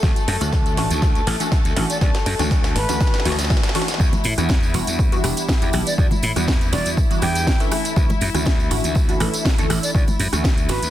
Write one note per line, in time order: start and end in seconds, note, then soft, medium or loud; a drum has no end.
0.00 0.11 D2 loud
0.00 0.16 E3 medium
0.00 4.01 A3 medium
0.00 0.17 A3 medium
0.00 0.17 C#4 medium
0.00 0.17 D4 medium
0.00 0.17 F#4 medium
0.00 4.01 A4 medium
0.00 kick loud
0.00 snare medium
0.00 tambourine soft
0.16 closed hi-hat medium
0.16 tambourine soft
0.28 0.36 F#2 medium
0.28 snare medium
0.28 open hi-hat loud
0.41 0.77 D2 medium
0.41 0.53 E3 medium
0.41 0.53 A3 medium
0.41 0.53 C#4 medium
0.41 0.53 D4 medium
0.41 0.53 F#4 loud
0.41 closed hi-hat medium
0.41 tambourine medium
0.53 kick loud
0.53 snare medium
0.53 tambourine soft
0.66 closed hi-hat soft
0.66 tambourine soft
0.77 0.85 A1 medium
0.77 1.00 E3 medium
0.77 1.00 A3 medium
0.77 1.00 C#4 medium
0.77 1.01 D4 medium
0.77 1.01 F#4 medium
0.77 snare medium
0.77 open hi-hat medium
0.91 1.20 D2 medium
0.91 closed hi-hat medium
0.91 tambourine medium
1.02 1.16 E3 medium
1.02 1.16 A3 medium
1.02 1.16 C#4 medium
1.02 1.16 D4 medium
1.02 1.16 F#4 medium
1.02 kick loud
1.02 snare medium
1.02 tambourine soft
1.15 closed hi-hat soft
1.15 tambourine soft
1.27 1.35 A1 medium
1.27 snare medium
1.27 open hi-hat loud
1.40 1.52 E3 medium
1.40 1.52 A3 medium
1.40 1.52 C#4 medium
1.40 1.52 D4 medium
1.40 1.52 F#4 loud
1.40 closed hi-hat medium
1.40 tambourine medium
1.52 kick loud
1.52 snare medium
1.52 tambourine medium
1.65 1.72 D2 medium
1.65 closed hi-hat medium
1.65 tambourine soft
1.76 1.85 A1 medium
1.76 1.99 E3 medium
1.76 2.00 A3 medium
1.76 2.00 C#4 medium
1.76 2.00 D4 medium
1.76 2.00 F#4 medium
1.76 snare medium
1.76 open hi-hat loud
1.90 1.97 D5 medium
1.90 closed hi-hat medium
1.90 tambourine medium
2.01 2.09 D2 loud
2.01 2.15 E3 medium
2.01 2.15 A3 medium
2.01 2.15 C#4 medium
2.01 2.15 D4 medium
2.01 2.15 F#4 medium
2.01 2.10 D5 medium
2.01 kick loud
2.01 snare medium
2.01 tambourine medium
2.15 snare medium
2.15 closed hi-hat medium
2.15 tambourine soft
2.26 2.34 F#2 medium
2.26 snare medium
2.26 open hi-hat loud
2.39 2.77 D2 medium
2.39 2.49 E3 medium
2.39 2.49 A3 medium
2.39 2.49 C#4 medium
2.39 2.49 D4 medium
2.39 2.49 F#4 loud
2.39 snare medium
2.39 closed hi-hat medium
2.39 tambourine medium
2.51 2.64 E3 medium
2.51 2.64 A3 medium
2.51 2.65 C#4 medium
2.51 2.65 D4 medium
2.51 2.65 F#4 medium
2.51 kick loud
2.51 snare medium
2.51 tambourine medium
2.64 snare medium
2.64 closed hi-hat soft
2.64 tambourine soft
2.76 2.84 A1 loud
2.76 3.25 B4 medium
2.76 snare loud
2.76 open hi-hat loud
2.89 3.04 D2 medium
2.89 2.99 E3 medium
2.89 2.99 A3 medium
2.89 2.99 C#4 medium
2.89 2.99 D4 medium
2.89 2.99 F#4 loud
2.89 snare medium
2.89 closed hi-hat medium
2.89 tambourine medium
3.01 3.14 A3 medium
3.01 3.14 C#4 medium
3.01 3.14 D4 medium
3.01 3.14 F#4 medium
3.01 kick loud
3.01 snare loud
3.01 tambourine medium
3.07 snare medium
3.14 snare loud
3.14 closed hi-hat soft
3.14 tambourine soft
3.20 snare medium
3.25 3.55 D2 loud
3.25 3.39 E3 medium
3.25 3.39 A3 medium
3.25 3.39 C#4 medium
3.25 3.39 D4 medium
3.25 3.39 F#4 loud
3.25 snare loud
3.25 open hi-hat loud
3.32 snare medium
3.39 snare loud
3.39 closed hi-hat medium
3.39 tambourine medium
3.44 snare loud
3.50 3.64 E3 medium
3.50 3.64 A3 medium
3.50 3.64 C#4 medium
3.50 3.64 D4 medium
3.50 3.64 F#4 loud
3.50 kick loud
3.50 snare loud
3.50 tambourine medium
3.57 snare loud
3.63 snare loud
3.63 closed hi-hat medium
3.63 tambourine soft
3.69 snare loud
3.75 3.88 E3 medium
3.75 3.88 A3 medium
3.75 3.89 C#4 medium
3.75 3.89 D4 medium
3.75 3.89 F#4 loud
3.75 snare loud
3.75 open hi-hat medium
3.82 snare loud
3.88 snare loud
3.88 closed hi-hat medium
3.88 tambourine medium
3.94 snare loud
3.99 4.08 E2 loud
3.99 4.13 E3 medium
3.99 4.13 G3 medium
3.99 4.13 B3 medium
3.99 4.13 D4 medium
3.99 10.90 E4 medium
3.99 4.14 F#4 medium
3.99 kick loud
3.99 tambourine medium
4.13 closed hi-hat soft
4.13 tambourine soft
4.13 high conga medium
4.13 low conga loud
4.24 4.33 A2 medium
4.24 open hi-hat loud
4.24 tambourine loud
4.38 4.76 E2 medium
4.38 4.50 E3 loud
4.38 4.50 G3 medium
4.38 4.50 B3 medium
4.38 4.50 D4 medium
4.38 4.50 F#4 loud
4.38 cross-stick medium
4.38 closed hi-hat medium
4.38 tambourine medium
4.38 tambourine soft
4.49 kick loud
4.49 snare loud
4.49 tambourine soft
4.49 tambourine medium
4.63 tambourine soft
4.74 4.82 E1 loud
4.74 5.09 E3 medium
4.74 5.09 G3 medium
4.74 5.09 B3 medium
4.74 5.09 D4 medium
4.74 5.09 F#4 medium
4.74 open hi-hat medium
4.74 tambourine loud
4.87 5.17 E2 medium
4.87 closed hi-hat medium
4.87 tambourine soft
4.87 tambourine medium
4.99 kick loud
4.99 tambourine medium
5.12 5.21 E3 loud
5.12 5.21 G3 medium
5.12 5.22 B3 medium
5.12 5.22 D4 medium
5.12 5.22 F#4 loud
5.12 closed hi-hat medium
5.12 tambourine soft
5.23 5.32 E1 medium
5.23 5.58 E3 medium
5.23 5.58 G3 medium
5.23 5.59 B3 medium
5.23 5.59 D4 medium
5.23 5.59 G4 medium
5.23 cross-stick medium
5.23 open hi-hat loud
5.23 tambourine loud
5.37 closed hi-hat medium
5.37 tambourine soft
5.37 tambourine medium
5.49 kick loud
5.49 snare loud
5.49 tambourine soft
5.49 tambourine medium
5.62 5.69 E2 medium
5.62 5.95 E3 loud
5.62 5.95 G3 medium
5.62 5.95 B3 medium
5.62 5.96 D4 medium
5.62 5.96 G4 loud
5.62 closed hi-hat medium
5.62 tambourine soft
5.73 5.81 B1 medium
5.73 cross-stick medium
5.73 open hi-hat loud
5.73 tambourine loud
5.86 5.94 D5 medium
5.86 closed hi-hat medium
5.86 tambourine soft
5.87 tambourine medium
5.98 6.06 E2 loud
5.98 6.12 E3 medium
5.98 6.12 G3 medium
5.98 6.12 B3 medium
5.98 6.12 D4 medium
5.98 6.12 F#4 medium
5.98 6.07 D5 medium
5.98 kick loud
5.98 tambourine medium
6.11 closed hi-hat soft
6.11 tambourine soft
6.11 high conga medium
6.11 low conga medium
6.23 6.31 A2 medium
6.23 open hi-hat loud
6.23 tambourine loud
6.36 6.74 E2 medium
6.36 6.48 E3 medium
6.36 6.48 G3 medium
6.36 6.48 B3 medium
6.36 6.48 D4 medium
6.36 6.48 F#4 loud
6.36 cross-stick medium
6.36 closed hi-hat medium
6.36 tambourine soft
6.36 tambourine medium
6.48 kick loud
6.48 snare loud
6.48 tambourine soft
6.48 tambourine medium
6.61 closed hi-hat soft
6.61 tambourine soft
6.72 6.81 E1 medium
6.72 7.07 E3 medium
6.72 7.07 G3 medium
6.72 7.07 B3 medium
6.72 7.07 D4 medium
6.72 7.08 F#4 medium
6.72 6.90 D5 loud
6.72 snare medium
6.72 open hi-hat loud
6.72 tambourine medium
6.85 7.00 E2 medium
6.85 closed hi-hat medium
6.85 tambourine soft
6.85 tambourine medium
6.97 kick loud
6.97 tambourine soft
6.97 tambourine medium
7.10 7.20 E3 medium
7.10 7.20 G3 medium
7.10 7.20 B3 medium
7.10 7.20 D4 medium
7.10 7.20 F#4 loud
7.10 closed hi-hat medium
7.10 tambourine soft
7.22 7.52 E2 loud
7.22 7.57 E3 medium
7.22 7.57 G3 medium
7.22 7.57 B3 medium
7.22 7.57 D4 medium
7.22 7.57 G4 medium
7.22 7.60 G5 medium
7.22 cross-stick medium
7.22 open hi-hat loud
7.22 tambourine medium
7.35 closed hi-hat medium
7.35 tambourine medium
7.35 tambourine soft
7.47 kick loud
7.47 snare loud
7.47 tambourine medium
7.59 7.94 E3 loud
7.59 7.94 A3 medium
7.59 7.94 C#4 loud
7.59 7.94 D4 medium
7.59 7.94 A4 loud
7.59 closed hi-hat medium
7.59 tambourine soft
7.61 tambourine soft
7.71 cross-stick medium
7.71 open hi-hat medium
7.71 tambourine loud
7.85 closed hi-hat medium
7.85 tambourine soft
7.85 tambourine medium
7.96 8.05 D2 medium
7.96 8.10 E3 medium
7.96 8.10 A3 medium
7.96 8.10 C#4 medium
7.96 8.10 D4 medium
7.96 8.10 F#4 medium
7.96 kick loud
7.96 tambourine medium
8.09 closed hi-hat soft
8.09 tambourine soft
8.09 high conga medium
8.09 low conga loud
8.21 8.29 F#2 medium
8.21 open hi-hat loud
8.21 tambourine medium
8.34 8.72 D2 medium
8.34 8.46 E3 loud
8.34 8.46 A3 medium
8.34 8.46 C#4 medium
8.34 8.47 D4 medium
8.34 8.47 F#4 loud
8.34 cross-stick medium
8.34 closed hi-hat medium
8.34 tambourine soft
8.34 tambourine medium
8.45 kick loud
8.45 snare loud
8.45 tambourine medium
8.60 tambourine soft
8.70 8.79 A1 medium
8.70 9.05 E3 medium
8.70 9.06 A3 medium
8.70 9.06 C#4 medium
8.70 9.06 D4 medium
8.70 9.06 F#4 medium
8.70 open hi-hat loud
8.70 tambourine medium
8.84 9.13 D2 medium
8.84 closed hi-hat medium
8.84 tambourine soft
8.84 tambourine medium
8.95 kick loud
8.95 tambourine soft
8.95 tambourine medium
9.08 9.18 E3 loud
9.08 9.18 A3 medium
9.08 9.18 C#4 loud
9.08 9.18 D4 medium
9.08 9.18 F#4 loud
9.08 closed hi-hat medium
9.08 tambourine soft
9.20 9.28 A1 medium
9.20 9.55 E3 medium
9.20 9.55 A3 medium
9.20 9.55 C#4 medium
9.20 9.55 D4 medium
9.20 9.56 A4 medium
9.20 cross-stick medium
9.20 open hi-hat loud
9.20 tambourine medium
9.33 closed hi-hat medium
9.33 tambourine soft
9.33 tambourine medium
9.45 kick loud
9.45 snare loud
9.45 tambourine medium
9.58 9.65 D2 medium
9.58 9.92 E3 loud
9.58 9.92 A3 loud
9.58 9.92 C#4 medium
9.58 9.92 D4 medium
9.58 9.92 A4 loud
9.58 closed hi-hat medium
9.58 tambourine soft
9.70 9.78 A1 medium
9.70 cross-stick medium
9.70 open hi-hat loud
9.70 tambourine medium
9.83 9.91 D5 medium
9.83 closed hi-hat medium
9.83 tambourine medium
9.83 tambourine soft
9.94 10.03 D2 loud
9.94 10.08 E3 medium
9.94 10.08 A3 medium
9.94 10.08 C#4 medium
9.94 10.08 D4 medium
9.94 10.09 F#4 loud
9.94 10.03 D5 medium
9.94 kick loud
9.94 tambourine medium
10.08 closed hi-hat soft
10.08 tambourine soft
10.08 high conga medium
10.08 low conga medium
10.20 10.28 F#2 medium
10.20 open hi-hat loud
10.20 tambourine loud
10.32 10.71 D2 medium
10.32 10.45 E3 medium
10.32 10.45 A3 medium
10.32 10.45 C#4 medium
10.32 10.45 D4 medium
10.32 10.45 F#4 loud
10.32 cross-stick medium
10.32 closed hi-hat medium
10.32 tambourine medium
10.32 tambourine soft
10.44 kick loud
10.44 snare loud
10.44 tambourine soft
10.44 tambourine medium
10.58 closed hi-hat soft
10.58 tambourine soft
10.69 10.77 A1 medium
10.69 10.90 E3 medium
10.69 10.90 A3 medium
10.69 10.90 C#4 medium
10.69 10.90 D4 medium
10.69 10.90 F#4 medium
10.69 10.90 B4 loud
10.69 snare medium
10.69 open hi-hat loud
10.69 tambourine medium
10.82 10.90 D2 medium
10.82 closed hi-hat medium
10.82 tambourine medium
10.82 tambourine soft